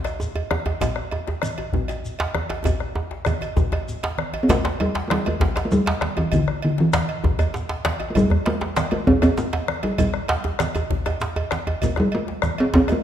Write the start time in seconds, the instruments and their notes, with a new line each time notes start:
0.04 bombo rim, cowbell, djembe slap, shekere
0.20 djembe tone, shekere
0.36 cowbell, djembe tone
0.50 bombo rim, djembe slap, high conga, djembe tone
0.66 cowbell, djembe slap, djembe tone
0.81 bombo low, cowbell, djembe slap, djembe bass, low conga, shekere
0.96 bombo rim
1.11 cowbell, djembe tone
1.27 bombo rim, djembe slap, djembe tone
1.42 bombo rim, cowbell, high conga, shekere
1.58 bombo rim, cowbell, djembe slap, djembe tone
1.72 bombo rim, bombo low, high conga, low conga, djembe bass
1.88 cowbell, djembe slap, shekere
2.05 shekere
2.19 cowbell, djembe slap
2.35 bombo rim, djembe slap, high conga, djembe tone
2.50 cowbell, djembe slap, djembe tone
2.64 bombo low, cowbell, djembe tone, low conga, djembe bass, shekere
2.80 bombo rim, djembe slap, high conga
2.96 bombo rim, djembe tone
3.11 djembe slap
3.25 bombo rim, cowbell, high conga, djembe tone, shekere
3.41 bombo rim, cowbell, djembe tone, shekere
3.56 bombo rim, bombo low, djembe tone, high conga, djembe bass, low conga, shekere
3.72 bombo rim, cowbell, djembe slap, djembe tone
3.88 shekere
4.03 cowbell, djembe slap
4.18 bombo rim, high conga
4.34 cowbell, djembe slap, djembe tone
4.43 talking drum C4
4.49 talking drum A3, bombo low, cowbell, djembe slap, djembe bass, low conga, shekere
4.65 bombo rim, djembe slap
4.80 talking drum G3, cowbell, djembe tone
4.95 bombo rim, djembe slap
5.08 talking drum G3 A3, bombo rim, cowbell, djembe slap, high conga
5.25 talking drum A3, bombo rim, cowbell, djembe slap, djembe tone
5.40 bombo rim, bombo low, djembe slap, high conga, djembe bass, low conga
5.56 bombo rim, cowbell, djembe slap, shekere
5.65 talking drum A3
5.72 talking drum G3, djembe tone, shekere
5.86 cowbell, djembe slap
6.01 bombo rim, djembe slap, high conga
6.17 talking drum E3, cowbell, djembe slap, djembe tone
6.32 talking drum D3, bombo low, cowbell, djembe bass, low conga, shekere
6.48 bombo rim
6.62 talking drum D3, cowbell
6.78 talking drum E3, bombo rim, djembe slap
6.93 bombo rim, cowbell, djembe slap, high conga, shekere
7.09 cowbell, djembe slap
7.24 bombo rim, bombo low, high conga, djembe tone, djembe bass, low conga
7.39 bombo rim, cowbell, djembe slap, djembe bass, shekere
7.54 djembe slap, shekere
7.69 cowbell, djembe slap
7.85 bombo rim, djembe slap, high conga
8.00 cowbell, djembe slap, djembe tone
8.10 talking drum A3
8.15 talking drum G3, bombo low, cowbell, djembe tone, djembe bass, low conga, shekere
8.30 bombo rim, djembe bass
8.46 talking drum A3, cowbell, djembe slap
8.61 bombo rim, djembe slap
8.76 bombo rim, cowbell, djembe slap, high conga, shekere
8.91 talking drum A3, bombo rim, cowbell, djembe slap, djembe tone
9.07 talking drum C4, bombo rim, bombo low, high conga, djembe tone, low conga, djembe bass
9.22 talking drum C4, bombo rim, cowbell, djembe slap, djembe bass, shekere
9.38 talking drum A3, djembe slap, shekere
9.53 cowbell, djembe slap
9.68 bombo rim, djembe slap, high conga
9.83 talking drum G3, cowbell, djembe slap, djembe tone
9.98 talking drum G3, bombo rim, bombo low, cowbell, djembe slap, high conga, low conga, djembe bass, shekere
10.14 bombo rim
10.28 bombo rim, cowbell, djembe slap
10.44 bombo rim, djembe slap, djembe tone
10.59 bombo rim, cowbell, djembe slap, high conga, shekere
10.75 cowbell, djembe slap, djembe tone, shekere
10.90 bombo rim, bombo low, djembe slap, djembe bass, low conga
11.06 bombo rim, cowbell, djembe slap, high conga, djembe tone, shekere
11.20 djembe slap, shekere
11.36 cowbell, djembe tone
11.51 bombo rim, djembe slap, high conga, shekere
11.67 cowbell, djembe slap, djembe tone, high conga
11.82 talking drum A3, bombo low, cowbell, djembe bass, low conga, shekere
11.96 talking drum G3, bombo rim, djembe tone
12.12 talking drum A3, cowbell
12.27 bombo rim, djembe slap
12.42 bombo rim, djembe tone, high conga, shekere
12.58 talking drum C4, bombo rim, cowbell, djembe slap, djembe tone
12.74 talking drum C4, bombo rim, bombo low, djembe slap, high conga, low conga, djembe bass
12.88 talking drum A3, bombo rim, cowbell, djembe slap, djembe tone, shekere